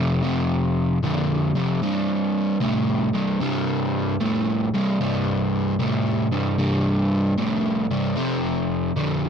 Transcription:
Already playing: F2 C3
0.23 F2 C3
1.03 F2 D3
1.55 F2 C3
1.82 C2 G2
2.60 C2 A2
3.14 C2 G2
3.40 C2 G2
4.21 C2 A2
4.74 C2 G2
5.01 C2 G2
5.79 C2 A2
6.32 C2 G2
6.58 C2 G2
7.38 C2 A2
7.91 C2 G2
8.16 F2 C3
8.96 F2 D3

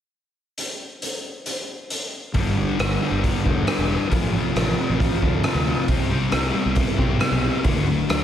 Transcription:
0.58 closed hi-hat
1.02 closed hi-hat
1.46 closed hi-hat
1.90 closed hi-hat
2.34 G1 G2 D3 G3, kick, open hi-hat
2.46 G1
2.56 G2 D3 G3 D4
2.79 G1 G2 D3 G3, cross-stick, open hi-hat
3.01 G2 D3 G3 D4
3.11 G1
3.23 G2 D3 G3 B3, kick, open hi-hat
3.44 E1 G2 D3 G3 A4, kick
3.65 G2 D3 G3 D4, cross-stick, open hi-hat
3.78 E1
3.87 G2 D3 G3 B3
4.09 A1 F2 A2 C3 F3, kick, open hi-hat
4.24 A1
4.32 F2 C3 F3
4.54 A1 F2 C3 F3, cross-stick, open hi-hat
4.77 F2 C3 F3 C4
4.89 A1
4.99 F2 C3 F3 F4, kick, open hi-hat
5.21 D2 F2 C3 F3 A4, kick
5.43 F2 C3 F3 C4, cross-stick, open hi-hat
5.55 D2
5.66 F2 C3 F3 F4
5.88 C2 C3 G3 C4, kick, open hi-hat
5.98 C2
6.09 C3 G3 C4
6.31 C2 C3 G3 C4, cross-stick, open hi-hat
6.54 C3 G3 B3 C4
6.65 C2
6.75 C3 G3 C4 E4, kick, open hi-hat
6.98 B1 C3 G3 C4 G4, kick
7.19 C3 G3 B3 C4, cross-stick, open hi-hat
7.31 B1
7.42 C3 G3 C4 E4
7.64 D2 D3 A3 D4, kick, open hi-hat
7.76 D2
7.87 D3 F#3 A3 D4
8.08 D2 D3 F#3 A3 D4, cross-stick, open hi-hat

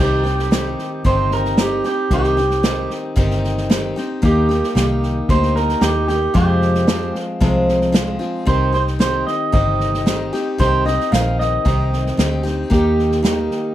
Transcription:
Already playing: C3
0.00 C2 D#3 C4 D#4 G4
0.24 C4 D#4 G4, snare
0.39 snare
0.51 D#3 C4 D#4 G4, snare, hi-hat pedal
0.78 snare
1.04 G1 C3 D#3 C4 D#4 G4 C5, kick, snare
1.31 A#4, snare
1.45 snare
1.57 D#3 C4 D#4 G4, snare, hi-hat pedal
1.84 C4 D#4 G4, snare
2.10 C2 C3 D#3 C4 D#4 G4, kick, snare
2.24 snare
2.37 C4 D#4 G4, snare
2.50 snare
2.63 D#3 C4 D#4 G4, snare, hi-hat pedal
2.90 snare
3.16 G1 C3 D#3 C4 D#4 G4, kick, snare
3.30 snare
3.44 snare
3.57 snare
3.69 D#3 C4 D#4 G4, snare, hi-hat pedal
3.96 C4 D#4 G4, snare
4.22 D#2 D#3 A#3 D#4 G4, kick, snare
4.49 A#3 D#4 G4, snare
4.63 snare
4.75 C2 D#3 A#3 D#4 G4, snare, hi-hat pedal
5.03 snare
5.29 D2 A#3 D#4 G4 C5, kick, snare
5.42 snare
5.56 A#4, snare
5.69 snare
5.81 D#2 D#3 A#3 D#4 G4, snare, hi-hat pedal
6.08 A#3 D#4 G4, snare
6.34 F2 C3 F3 G#3 C4 F4 G4, kick, snare
6.61 snare
6.75 snare
6.87 F3 G#3 C4 F4, snare, hi-hat pedal
7.15 snare
7.40 C2 F2 C3 F3 G#3 C4 F4, kick, snare
7.68 snare
7.81 snare
7.92 F3 G#3 C4 F4, snare, hi-hat pedal
8.19 F3 G#3 C4 F4, snare
8.46 C2 C3 D#3 C4 D#4 G4 C5, kick, snare
8.73 C4 D#4 G4 C5, snare
8.87 snare
8.99 D#3 C4 D#4 G4 C5, snare, hi-hat pedal
9.27 D#5, snare
9.52 G1 C3 D#3 C4 D#4 G4 D#5, kick, snare
9.80 snare
9.94 snare
10.06 D#3 C4 D#4 G4, snare, hi-hat pedal
10.33 C4 D#4 G4, snare
10.58 C2 C3 D#3 C4 D#4 G4 C5, kick, snare
10.85 C4 D#4 G4 D#5, snare
11.00 snare
11.12 A#1 D#3 C4 D#4 G4 F5, snare, hi-hat pedal
11.39 D#5, snare
11.65 C2 C3 D#3 C4 D#4 G4, kick, snare
11.93 snare
12.06 snare
12.17 D2 D#3 C4 D#4 G4, snare, hi-hat pedal
12.43 C4 D#4 G4, snare
12.70 D#2 D#3 A#3 D#4 G4, kick, snare
12.99 snare
13.11 snare
13.23 D#3 A#3 D#4 G4, snare, hi-hat pedal
13.51 snare

